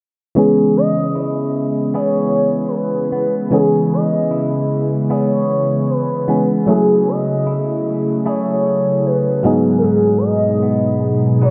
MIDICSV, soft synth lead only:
0, 0, Header, 1, 2, 480
1, 0, Start_track
1, 0, Key_signature, 4, "minor"
1, 0, Tempo, 789474
1, 220, Time_signature, 4, 2, 24, 8
1, 6995, End_track
2, 0, Start_track
2, 0, Title_t, "Soft synth lead"
2, 0, Program_c, 0, 80
2, 229, Note_on_c, 0, 68, 96
2, 448, Note_off_c, 0, 68, 0
2, 467, Note_on_c, 0, 75, 117
2, 919, Note_off_c, 0, 75, 0
2, 1188, Note_on_c, 0, 73, 103
2, 1630, Note_on_c, 0, 70, 66
2, 1639, Note_off_c, 0, 73, 0
2, 1670, Note_on_c, 0, 71, 99
2, 1680, Note_off_c, 0, 70, 0
2, 2035, Note_off_c, 0, 71, 0
2, 2152, Note_on_c, 0, 68, 101
2, 2370, Note_off_c, 0, 68, 0
2, 2389, Note_on_c, 0, 75, 108
2, 2840, Note_off_c, 0, 75, 0
2, 3106, Note_on_c, 0, 73, 97
2, 3587, Note_on_c, 0, 71, 100
2, 3596, Note_off_c, 0, 73, 0
2, 3953, Note_off_c, 0, 71, 0
2, 4067, Note_on_c, 0, 68, 105
2, 4307, Note_on_c, 0, 75, 108
2, 4316, Note_off_c, 0, 68, 0
2, 4783, Note_off_c, 0, 75, 0
2, 5027, Note_on_c, 0, 73, 102
2, 5508, Note_on_c, 0, 71, 98
2, 5518, Note_off_c, 0, 73, 0
2, 5874, Note_off_c, 0, 71, 0
2, 5948, Note_on_c, 0, 69, 72
2, 5989, Note_on_c, 0, 68, 97
2, 5998, Note_off_c, 0, 69, 0
2, 6189, Note_on_c, 0, 74, 73
2, 6198, Note_off_c, 0, 68, 0
2, 6228, Note_on_c, 0, 75, 109
2, 6237, Note_off_c, 0, 74, 0
2, 6704, Note_off_c, 0, 75, 0
2, 6947, Note_on_c, 0, 73, 115
2, 6995, Note_off_c, 0, 73, 0
2, 6995, End_track
0, 0, End_of_file